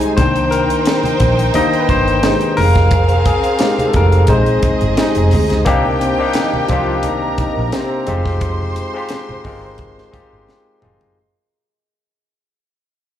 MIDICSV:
0, 0, Header, 1, 7, 480
1, 0, Start_track
1, 0, Key_signature, -3, "minor"
1, 0, Tempo, 687285
1, 123, Time_signature, 4, 2, 24, 8
1, 9218, End_track
2, 0, Start_track
2, 0, Title_t, "Violin section"
2, 0, Program_c, 0, 48
2, 0, Note_on_c, 0, 63, 87
2, 0, Note_on_c, 0, 72, 84
2, 0, Note_on_c, 0, 80, 102
2, 95, Note_off_c, 0, 63, 0
2, 95, Note_off_c, 0, 72, 0
2, 96, Note_off_c, 0, 80, 0
2, 123, Note_on_c, 0, 63, 91
2, 124, Note_on_c, 0, 79, 95
2, 127, Note_on_c, 0, 72, 95
2, 1771, Note_off_c, 0, 63, 0
2, 1771, Note_off_c, 0, 79, 0
2, 1773, Note_off_c, 0, 72, 0
2, 1806, Note_on_c, 0, 68, 85
2, 1809, Note_on_c, 0, 77, 100
2, 1812, Note_on_c, 0, 60, 95
2, 2976, Note_off_c, 0, 68, 0
2, 2978, Note_off_c, 0, 77, 0
2, 2979, Note_off_c, 0, 60, 0
2, 3003, Note_on_c, 0, 75, 78
2, 3006, Note_on_c, 0, 68, 80
2, 3007, Note_on_c, 0, 60, 68
2, 3940, Note_off_c, 0, 75, 0
2, 3942, Note_off_c, 0, 60, 0
2, 3942, Note_off_c, 0, 68, 0
2, 3968, Note_on_c, 0, 67, 92
2, 3968, Note_on_c, 0, 79, 101
2, 4903, Note_off_c, 0, 67, 0
2, 4903, Note_off_c, 0, 79, 0
2, 4925, Note_on_c, 0, 70, 82
2, 4925, Note_on_c, 0, 82, 84
2, 5627, Note_off_c, 0, 70, 0
2, 5627, Note_off_c, 0, 82, 0
2, 5641, Note_on_c, 0, 84, 102
2, 5644, Note_on_c, 0, 72, 98
2, 7775, Note_off_c, 0, 84, 0
2, 7777, Note_off_c, 0, 72, 0
2, 9218, End_track
3, 0, Start_track
3, 0, Title_t, "Tine electric piano"
3, 0, Program_c, 1, 4
3, 0, Control_c, 1, 64, 127
3, 0, Note_on_c, 1, 55, 52
3, 0, Note_on_c, 1, 56, 47
3, 0, Note_on_c, 1, 63, 61
3, 116, Note_on_c, 1, 72, 99
3, 117, Note_on_c, 1, 51, 49
3, 122, Note_on_c, 1, 58, 47
3, 129, Note_on_c, 1, 62, 62
3, 133, Control_c, 1, 64, 0
3, 138, Note_off_c, 1, 55, 0
3, 138, Note_off_c, 1, 56, 0
3, 139, Note_off_c, 1, 63, 0
3, 264, Control_c, 1, 64, 127
3, 355, Note_on_c, 1, 70, 96
3, 366, Note_off_c, 1, 72, 0
3, 1069, Note_off_c, 1, 58, 0
3, 1071, Note_off_c, 1, 51, 0
3, 1073, Note_off_c, 1, 62, 0
3, 1078, Note_on_c, 1, 58, 47
3, 1079, Note_on_c, 1, 51, 50
3, 1081, Note_on_c, 1, 62, 58
3, 1084, Note_on_c, 1, 75, 112
3, 1098, Note_off_c, 1, 70, 0
3, 1171, Note_off_c, 1, 75, 0
3, 1259, Note_on_c, 1, 71, 78
3, 1294, Note_off_c, 1, 58, 0
3, 1295, Note_off_c, 1, 51, 0
3, 1296, Note_off_c, 1, 62, 0
3, 1312, Note_off_c, 1, 71, 0
3, 1323, Note_on_c, 1, 72, 103
3, 1794, Note_on_c, 1, 70, 93
3, 1808, Control_c, 1, 64, 0
3, 1815, Note_off_c, 1, 72, 0
3, 1939, Control_c, 1, 64, 127
3, 2248, Note_off_c, 1, 70, 0
3, 2278, Note_on_c, 1, 68, 80
3, 2504, Note_on_c, 1, 67, 59
3, 2509, Note_on_c, 1, 56, 47
3, 2515, Note_on_c, 1, 63, 61
3, 2709, Note_on_c, 1, 69, 68
3, 2725, Note_off_c, 1, 68, 0
3, 2755, Note_off_c, 1, 69, 0
3, 2769, Note_on_c, 1, 70, 82
3, 2966, Note_off_c, 1, 67, 0
3, 2969, Note_off_c, 1, 56, 0
3, 2972, Note_off_c, 1, 63, 0
3, 2996, Note_on_c, 1, 56, 56
3, 2998, Note_on_c, 1, 72, 89
3, 3002, Note_on_c, 1, 60, 51
3, 3002, Note_on_c, 1, 63, 66
3, 3006, Control_c, 1, 64, 0
3, 3010, Note_off_c, 1, 70, 0
3, 3122, Control_c, 1, 64, 127
3, 3323, Note_off_c, 1, 56, 0
3, 3326, Note_off_c, 1, 60, 0
3, 3326, Note_off_c, 1, 63, 0
3, 3689, Note_off_c, 1, 72, 0
3, 3946, Note_on_c, 1, 58, 113
3, 3954, Note_on_c, 1, 60, 98
3, 3956, Note_on_c, 1, 62, 101
3, 3960, Note_on_c, 1, 63, 97
3, 3962, Note_on_c, 1, 67, 127
3, 3964, Control_c, 1, 64, 0
3, 4086, Control_c, 1, 64, 127
3, 4197, Note_off_c, 1, 58, 0
3, 4201, Note_off_c, 1, 60, 0
3, 4202, Note_off_c, 1, 62, 0
3, 4203, Note_off_c, 1, 63, 0
3, 4205, Note_off_c, 1, 67, 0
3, 4319, Note_on_c, 1, 58, 86
3, 4322, Note_on_c, 1, 60, 72
3, 4327, Note_on_c, 1, 62, 84
3, 4334, Note_on_c, 1, 63, 85
3, 4337, Note_on_c, 1, 67, 86
3, 4567, Note_off_c, 1, 58, 0
3, 4569, Note_off_c, 1, 60, 0
3, 4571, Note_off_c, 1, 62, 0
3, 4575, Note_off_c, 1, 63, 0
3, 4576, Note_off_c, 1, 67, 0
3, 4675, Note_on_c, 1, 58, 84
3, 4683, Note_on_c, 1, 60, 80
3, 4689, Note_on_c, 1, 62, 91
3, 4689, Note_on_c, 1, 63, 81
3, 4696, Note_on_c, 1, 67, 93
3, 5335, Note_off_c, 1, 58, 0
3, 5339, Note_off_c, 1, 60, 0
3, 5342, Note_off_c, 1, 62, 0
3, 5342, Note_off_c, 1, 63, 0
3, 5346, Note_off_c, 1, 67, 0
3, 5630, Note_on_c, 1, 56, 89
3, 5638, Note_on_c, 1, 60, 88
3, 5639, Note_on_c, 1, 63, 83
3, 5646, Control_c, 1, 64, 0
3, 5648, Note_on_c, 1, 65, 89
3, 5650, Note_on_c, 1, 67, 101
3, 5771, Control_c, 1, 64, 127
3, 6114, Note_off_c, 1, 56, 0
3, 6119, Note_off_c, 1, 60, 0
3, 6119, Note_off_c, 1, 63, 0
3, 6123, Note_off_c, 1, 65, 0
3, 6124, Note_off_c, 1, 67, 0
3, 6242, Note_on_c, 1, 60, 74
3, 6243, Note_on_c, 1, 56, 88
3, 6253, Note_on_c, 1, 63, 80
3, 6257, Note_on_c, 1, 65, 73
3, 6263, Note_on_c, 1, 67, 97
3, 6490, Note_off_c, 1, 56, 0
3, 6490, Note_off_c, 1, 60, 0
3, 6496, Note_off_c, 1, 63, 0
3, 6498, Note_off_c, 1, 65, 0
3, 6501, Note_off_c, 1, 67, 0
3, 6593, Note_on_c, 1, 56, 80
3, 6600, Note_on_c, 1, 60, 81
3, 6604, Note_on_c, 1, 63, 79
3, 6611, Note_on_c, 1, 65, 76
3, 6613, Note_on_c, 1, 70, 93
3, 6930, Note_off_c, 1, 56, 0
3, 6934, Note_off_c, 1, 60, 0
3, 6936, Note_off_c, 1, 63, 0
3, 6939, Note_off_c, 1, 65, 0
3, 6940, Note_off_c, 1, 70, 0
3, 7064, Note_on_c, 1, 56, 82
3, 7071, Note_on_c, 1, 63, 76
3, 7072, Note_on_c, 1, 60, 83
3, 7081, Note_on_c, 1, 65, 84
3, 7083, Note_on_c, 1, 67, 96
3, 7406, Note_off_c, 1, 56, 0
3, 7410, Note_off_c, 1, 60, 0
3, 7410, Note_off_c, 1, 63, 0
3, 7415, Note_off_c, 1, 65, 0
3, 7416, Note_off_c, 1, 67, 0
3, 7548, Note_on_c, 1, 56, 67
3, 7555, Note_on_c, 1, 60, 69
3, 7562, Note_on_c, 1, 63, 66
3, 7562, Note_on_c, 1, 65, 72
3, 7565, Note_on_c, 1, 68, 82
3, 7724, Note_off_c, 1, 56, 0
3, 7728, Note_off_c, 1, 60, 0
3, 7731, Note_off_c, 1, 65, 0
3, 7732, Note_off_c, 1, 63, 0
3, 7733, Note_off_c, 1, 68, 0
3, 7810, Control_c, 1, 64, 0
3, 9218, End_track
4, 0, Start_track
4, 0, Title_t, "Trombone section"
4, 0, Program_c, 2, 61
4, 0, Note_on_c, 2, 48, 87
4, 0, Note_on_c, 2, 56, 81
4, 0, Note_on_c, 2, 63, 94
4, 100, Note_off_c, 2, 63, 0
4, 101, Note_off_c, 2, 48, 0
4, 101, Note_off_c, 2, 56, 0
4, 1076, Note_on_c, 2, 48, 77
4, 1078, Note_on_c, 2, 63, 87
4, 1079, Note_on_c, 2, 58, 71
4, 1160, Note_off_c, 2, 48, 0
4, 1161, Note_off_c, 2, 63, 0
4, 1162, Note_off_c, 2, 58, 0
4, 1553, Note_on_c, 2, 48, 78
4, 1553, Note_on_c, 2, 56, 84
4, 1554, Note_on_c, 2, 63, 89
4, 2011, Note_off_c, 2, 48, 0
4, 2011, Note_off_c, 2, 56, 0
4, 2012, Note_off_c, 2, 63, 0
4, 2994, Note_on_c, 2, 63, 79
4, 2995, Note_on_c, 2, 56, 79
4, 2997, Note_on_c, 2, 48, 75
4, 3077, Note_off_c, 2, 63, 0
4, 3078, Note_off_c, 2, 56, 0
4, 3079, Note_off_c, 2, 48, 0
4, 3477, Note_on_c, 2, 63, 92
4, 3478, Note_on_c, 2, 48, 86
4, 3478, Note_on_c, 2, 56, 75
4, 3932, Note_off_c, 2, 63, 0
4, 3933, Note_off_c, 2, 48, 0
4, 3933, Note_off_c, 2, 56, 0
4, 3954, Note_on_c, 2, 46, 88
4, 3955, Note_on_c, 2, 58, 107
4, 4147, Note_off_c, 2, 46, 0
4, 4148, Note_off_c, 2, 58, 0
4, 4194, Note_on_c, 2, 48, 73
4, 4195, Note_on_c, 2, 60, 78
4, 4387, Note_off_c, 2, 48, 0
4, 4388, Note_off_c, 2, 60, 0
4, 4433, Note_on_c, 2, 51, 80
4, 4434, Note_on_c, 2, 63, 87
4, 4626, Note_off_c, 2, 51, 0
4, 4627, Note_off_c, 2, 63, 0
4, 4667, Note_on_c, 2, 65, 100
4, 4669, Note_on_c, 2, 53, 81
4, 4863, Note_off_c, 2, 65, 0
4, 4864, Note_off_c, 2, 53, 0
4, 4906, Note_on_c, 2, 51, 73
4, 4909, Note_on_c, 2, 63, 80
4, 5103, Note_off_c, 2, 51, 0
4, 5104, Note_off_c, 2, 63, 0
4, 5152, Note_on_c, 2, 63, 86
4, 5154, Note_on_c, 2, 51, 77
4, 5346, Note_off_c, 2, 63, 0
4, 5347, Note_off_c, 2, 51, 0
4, 5394, Note_on_c, 2, 60, 99
4, 5397, Note_on_c, 2, 48, 90
4, 5743, Note_off_c, 2, 60, 0
4, 5745, Note_off_c, 2, 48, 0
4, 9218, End_track
5, 0, Start_track
5, 0, Title_t, "Fingered electric bass"
5, 0, Program_c, 3, 33
5, 126, Note_on_c, 3, 36, 106
5, 432, Note_off_c, 3, 36, 0
5, 841, Note_on_c, 3, 34, 96
5, 1040, Note_off_c, 3, 34, 0
5, 1321, Note_on_c, 3, 31, 92
5, 1628, Note_off_c, 3, 31, 0
5, 1801, Note_on_c, 3, 29, 96
5, 2308, Note_off_c, 3, 29, 0
5, 2754, Note_on_c, 3, 29, 96
5, 2993, Note_off_c, 3, 29, 0
5, 2993, Note_on_c, 3, 34, 99
5, 3195, Note_off_c, 3, 34, 0
5, 3364, Note_on_c, 3, 31, 88
5, 3457, Note_off_c, 3, 31, 0
5, 3605, Note_on_c, 3, 29, 94
5, 3698, Note_off_c, 3, 29, 0
5, 3724, Note_on_c, 3, 38, 100
5, 3829, Note_off_c, 3, 38, 0
5, 3851, Note_on_c, 3, 37, 89
5, 3941, Note_off_c, 3, 37, 0
5, 3959, Note_on_c, 3, 36, 101
5, 4266, Note_off_c, 3, 36, 0
5, 4677, Note_on_c, 3, 36, 83
5, 5077, Note_off_c, 3, 36, 0
5, 5289, Note_on_c, 3, 34, 76
5, 5380, Note_off_c, 3, 34, 0
5, 5643, Note_on_c, 3, 29, 109
5, 6150, Note_off_c, 3, 29, 0
5, 6599, Note_on_c, 3, 31, 94
5, 7000, Note_off_c, 3, 31, 0
5, 7214, Note_on_c, 3, 31, 90
5, 7304, Note_off_c, 3, 31, 0
5, 7563, Note_on_c, 3, 30, 85
5, 7763, Note_off_c, 3, 30, 0
5, 9218, End_track
6, 0, Start_track
6, 0, Title_t, "Muted fingered electric bass strokes"
6, 3235, Note_on_c, 9, 29, 47
6, 3304, Note_off_c, 9, 29, 0
6, 4572, Note_on_c, 9, 29, 48
6, 4642, Note_off_c, 9, 29, 0
6, 5160, Note_on_c, 9, 29, 48
6, 5230, Note_off_c, 9, 29, 0
6, 6492, Note_on_c, 9, 29, 48
6, 6562, Note_off_c, 9, 29, 0
6, 7078, Note_on_c, 9, 29, 44
6, 7148, Note_off_c, 9, 29, 0
6, 9218, End_track
7, 0, Start_track
7, 0, Title_t, "Drums"
7, 9, Note_on_c, 9, 42, 56
7, 78, Note_off_c, 9, 42, 0
7, 122, Note_on_c, 9, 42, 102
7, 124, Note_on_c, 9, 36, 99
7, 125, Note_on_c, 9, 62, 28
7, 192, Note_off_c, 9, 42, 0
7, 194, Note_off_c, 9, 36, 0
7, 195, Note_off_c, 9, 62, 0
7, 249, Note_on_c, 9, 42, 45
7, 256, Note_on_c, 9, 63, 44
7, 319, Note_off_c, 9, 42, 0
7, 326, Note_off_c, 9, 63, 0
7, 352, Note_on_c, 9, 62, 29
7, 365, Note_on_c, 9, 42, 81
7, 422, Note_off_c, 9, 62, 0
7, 435, Note_off_c, 9, 42, 0
7, 490, Note_on_c, 9, 42, 60
7, 560, Note_off_c, 9, 42, 0
7, 597, Note_on_c, 9, 42, 98
7, 610, Note_on_c, 9, 38, 105
7, 667, Note_off_c, 9, 42, 0
7, 680, Note_off_c, 9, 38, 0
7, 723, Note_on_c, 9, 63, 73
7, 736, Note_on_c, 9, 42, 53
7, 793, Note_off_c, 9, 63, 0
7, 806, Note_off_c, 9, 42, 0
7, 837, Note_on_c, 9, 42, 81
7, 840, Note_on_c, 9, 36, 86
7, 846, Note_on_c, 9, 64, 77
7, 907, Note_off_c, 9, 42, 0
7, 910, Note_off_c, 9, 36, 0
7, 915, Note_off_c, 9, 64, 0
7, 971, Note_on_c, 9, 42, 50
7, 1041, Note_off_c, 9, 42, 0
7, 1075, Note_on_c, 9, 42, 91
7, 1081, Note_on_c, 9, 62, 29
7, 1081, Note_on_c, 9, 63, 61
7, 1081, Note_on_c, 9, 64, 66
7, 1145, Note_off_c, 9, 42, 0
7, 1151, Note_off_c, 9, 62, 0
7, 1151, Note_off_c, 9, 63, 0
7, 1151, Note_off_c, 9, 64, 0
7, 1211, Note_on_c, 9, 42, 38
7, 1281, Note_off_c, 9, 42, 0
7, 1319, Note_on_c, 9, 36, 107
7, 1320, Note_on_c, 9, 42, 71
7, 1329, Note_on_c, 9, 62, 29
7, 1329, Note_on_c, 9, 63, 70
7, 1389, Note_off_c, 9, 36, 0
7, 1390, Note_off_c, 9, 42, 0
7, 1399, Note_off_c, 9, 62, 0
7, 1399, Note_off_c, 9, 63, 0
7, 1451, Note_on_c, 9, 42, 40
7, 1521, Note_off_c, 9, 42, 0
7, 1558, Note_on_c, 9, 42, 96
7, 1561, Note_on_c, 9, 38, 108
7, 1563, Note_on_c, 9, 62, 35
7, 1627, Note_off_c, 9, 42, 0
7, 1631, Note_off_c, 9, 38, 0
7, 1633, Note_off_c, 9, 62, 0
7, 1681, Note_on_c, 9, 42, 52
7, 1751, Note_off_c, 9, 42, 0
7, 1794, Note_on_c, 9, 46, 78
7, 1804, Note_on_c, 9, 62, 35
7, 1804, Note_on_c, 9, 64, 76
7, 1864, Note_off_c, 9, 46, 0
7, 1873, Note_off_c, 9, 62, 0
7, 1873, Note_off_c, 9, 64, 0
7, 1922, Note_on_c, 9, 42, 55
7, 1926, Note_on_c, 9, 36, 93
7, 1932, Note_on_c, 9, 38, 38
7, 1991, Note_off_c, 9, 42, 0
7, 1996, Note_off_c, 9, 36, 0
7, 2002, Note_off_c, 9, 38, 0
7, 2031, Note_on_c, 9, 42, 84
7, 2035, Note_on_c, 9, 36, 123
7, 2045, Note_on_c, 9, 62, 33
7, 2100, Note_off_c, 9, 42, 0
7, 2105, Note_off_c, 9, 36, 0
7, 2115, Note_off_c, 9, 62, 0
7, 2157, Note_on_c, 9, 42, 45
7, 2175, Note_on_c, 9, 63, 53
7, 2227, Note_off_c, 9, 42, 0
7, 2245, Note_off_c, 9, 63, 0
7, 2274, Note_on_c, 9, 42, 82
7, 2275, Note_on_c, 9, 36, 92
7, 2277, Note_on_c, 9, 62, 33
7, 2344, Note_off_c, 9, 42, 0
7, 2345, Note_off_c, 9, 36, 0
7, 2347, Note_off_c, 9, 62, 0
7, 2400, Note_on_c, 9, 42, 53
7, 2470, Note_off_c, 9, 42, 0
7, 2505, Note_on_c, 9, 42, 101
7, 2518, Note_on_c, 9, 38, 115
7, 2525, Note_on_c, 9, 62, 32
7, 2575, Note_off_c, 9, 42, 0
7, 2588, Note_off_c, 9, 38, 0
7, 2595, Note_off_c, 9, 62, 0
7, 2644, Note_on_c, 9, 63, 67
7, 2650, Note_on_c, 9, 42, 59
7, 2714, Note_off_c, 9, 63, 0
7, 2720, Note_off_c, 9, 42, 0
7, 2748, Note_on_c, 9, 42, 66
7, 2753, Note_on_c, 9, 36, 93
7, 2757, Note_on_c, 9, 62, 36
7, 2757, Note_on_c, 9, 64, 74
7, 2818, Note_off_c, 9, 42, 0
7, 2823, Note_off_c, 9, 36, 0
7, 2827, Note_off_c, 9, 62, 0
7, 2827, Note_off_c, 9, 64, 0
7, 2880, Note_on_c, 9, 42, 46
7, 2950, Note_off_c, 9, 42, 0
7, 2982, Note_on_c, 9, 42, 89
7, 2991, Note_on_c, 9, 36, 90
7, 2993, Note_on_c, 9, 62, 29
7, 2993, Note_on_c, 9, 63, 59
7, 2993, Note_on_c, 9, 64, 68
7, 3052, Note_off_c, 9, 42, 0
7, 3061, Note_off_c, 9, 36, 0
7, 3063, Note_off_c, 9, 62, 0
7, 3063, Note_off_c, 9, 63, 0
7, 3063, Note_off_c, 9, 64, 0
7, 3117, Note_on_c, 9, 42, 43
7, 3187, Note_off_c, 9, 42, 0
7, 3231, Note_on_c, 9, 42, 83
7, 3233, Note_on_c, 9, 36, 100
7, 3238, Note_on_c, 9, 63, 72
7, 3300, Note_off_c, 9, 42, 0
7, 3303, Note_off_c, 9, 36, 0
7, 3307, Note_off_c, 9, 63, 0
7, 3358, Note_on_c, 9, 42, 39
7, 3428, Note_off_c, 9, 42, 0
7, 3473, Note_on_c, 9, 42, 85
7, 3476, Note_on_c, 9, 62, 31
7, 3477, Note_on_c, 9, 38, 107
7, 3543, Note_off_c, 9, 42, 0
7, 3546, Note_off_c, 9, 38, 0
7, 3546, Note_off_c, 9, 62, 0
7, 3596, Note_on_c, 9, 42, 53
7, 3666, Note_off_c, 9, 42, 0
7, 3709, Note_on_c, 9, 46, 75
7, 3721, Note_on_c, 9, 62, 39
7, 3721, Note_on_c, 9, 64, 81
7, 3779, Note_off_c, 9, 46, 0
7, 3791, Note_off_c, 9, 62, 0
7, 3791, Note_off_c, 9, 64, 0
7, 3841, Note_on_c, 9, 42, 53
7, 3852, Note_on_c, 9, 38, 35
7, 3911, Note_off_c, 9, 42, 0
7, 3922, Note_off_c, 9, 38, 0
7, 3951, Note_on_c, 9, 42, 91
7, 3955, Note_on_c, 9, 36, 102
7, 4021, Note_off_c, 9, 42, 0
7, 4025, Note_off_c, 9, 36, 0
7, 4090, Note_on_c, 9, 63, 50
7, 4160, Note_off_c, 9, 63, 0
7, 4197, Note_on_c, 9, 62, 33
7, 4199, Note_on_c, 9, 42, 76
7, 4267, Note_off_c, 9, 62, 0
7, 4268, Note_off_c, 9, 42, 0
7, 4424, Note_on_c, 9, 42, 105
7, 4437, Note_on_c, 9, 38, 100
7, 4447, Note_on_c, 9, 62, 33
7, 4494, Note_off_c, 9, 42, 0
7, 4507, Note_off_c, 9, 38, 0
7, 4517, Note_off_c, 9, 62, 0
7, 4564, Note_on_c, 9, 63, 65
7, 4634, Note_off_c, 9, 63, 0
7, 4669, Note_on_c, 9, 42, 75
7, 4676, Note_on_c, 9, 36, 80
7, 4682, Note_on_c, 9, 64, 74
7, 4739, Note_off_c, 9, 42, 0
7, 4746, Note_off_c, 9, 36, 0
7, 4751, Note_off_c, 9, 64, 0
7, 4909, Note_on_c, 9, 42, 94
7, 4918, Note_on_c, 9, 63, 67
7, 4918, Note_on_c, 9, 64, 62
7, 4979, Note_off_c, 9, 42, 0
7, 4987, Note_off_c, 9, 63, 0
7, 4987, Note_off_c, 9, 64, 0
7, 5153, Note_on_c, 9, 42, 83
7, 5156, Note_on_c, 9, 36, 101
7, 5162, Note_on_c, 9, 62, 34
7, 5162, Note_on_c, 9, 63, 68
7, 5223, Note_off_c, 9, 42, 0
7, 5226, Note_off_c, 9, 36, 0
7, 5232, Note_off_c, 9, 62, 0
7, 5232, Note_off_c, 9, 63, 0
7, 5395, Note_on_c, 9, 42, 88
7, 5398, Note_on_c, 9, 38, 102
7, 5465, Note_off_c, 9, 42, 0
7, 5468, Note_off_c, 9, 38, 0
7, 5634, Note_on_c, 9, 42, 72
7, 5644, Note_on_c, 9, 62, 37
7, 5644, Note_on_c, 9, 64, 77
7, 5703, Note_off_c, 9, 42, 0
7, 5713, Note_off_c, 9, 62, 0
7, 5713, Note_off_c, 9, 64, 0
7, 5766, Note_on_c, 9, 36, 81
7, 5768, Note_on_c, 9, 38, 35
7, 5836, Note_off_c, 9, 36, 0
7, 5837, Note_off_c, 9, 38, 0
7, 5874, Note_on_c, 9, 42, 84
7, 5877, Note_on_c, 9, 36, 108
7, 5944, Note_off_c, 9, 42, 0
7, 5947, Note_off_c, 9, 36, 0
7, 6019, Note_on_c, 9, 63, 47
7, 6089, Note_off_c, 9, 63, 0
7, 6118, Note_on_c, 9, 42, 77
7, 6118, Note_on_c, 9, 62, 32
7, 6188, Note_off_c, 9, 42, 0
7, 6188, Note_off_c, 9, 62, 0
7, 6346, Note_on_c, 9, 42, 103
7, 6359, Note_on_c, 9, 38, 108
7, 6371, Note_on_c, 9, 62, 31
7, 6416, Note_off_c, 9, 42, 0
7, 6429, Note_off_c, 9, 38, 0
7, 6441, Note_off_c, 9, 62, 0
7, 6489, Note_on_c, 9, 63, 65
7, 6559, Note_off_c, 9, 63, 0
7, 6596, Note_on_c, 9, 46, 49
7, 6599, Note_on_c, 9, 36, 77
7, 6604, Note_on_c, 9, 62, 35
7, 6604, Note_on_c, 9, 64, 72
7, 6666, Note_off_c, 9, 46, 0
7, 6668, Note_off_c, 9, 36, 0
7, 6674, Note_off_c, 9, 62, 0
7, 6674, Note_off_c, 9, 64, 0
7, 6830, Note_on_c, 9, 42, 90
7, 6837, Note_on_c, 9, 36, 90
7, 6838, Note_on_c, 9, 63, 69
7, 6838, Note_on_c, 9, 64, 71
7, 6899, Note_off_c, 9, 42, 0
7, 6906, Note_off_c, 9, 36, 0
7, 6908, Note_off_c, 9, 63, 0
7, 6908, Note_off_c, 9, 64, 0
7, 6971, Note_on_c, 9, 38, 32
7, 7041, Note_off_c, 9, 38, 0
7, 7079, Note_on_c, 9, 36, 95
7, 7081, Note_on_c, 9, 42, 84
7, 7083, Note_on_c, 9, 62, 32
7, 7083, Note_on_c, 9, 63, 66
7, 7149, Note_off_c, 9, 36, 0
7, 7151, Note_off_c, 9, 42, 0
7, 7152, Note_off_c, 9, 62, 0
7, 7152, Note_off_c, 9, 63, 0
7, 7323, Note_on_c, 9, 38, 58
7, 7323, Note_on_c, 9, 62, 33
7, 7393, Note_off_c, 9, 38, 0
7, 7393, Note_off_c, 9, 62, 0
7, 7557, Note_on_c, 9, 45, 93
7, 7573, Note_on_c, 9, 64, 66
7, 7627, Note_off_c, 9, 45, 0
7, 7643, Note_off_c, 9, 64, 0
7, 7689, Note_on_c, 9, 43, 95
7, 7759, Note_off_c, 9, 43, 0
7, 9218, End_track
0, 0, End_of_file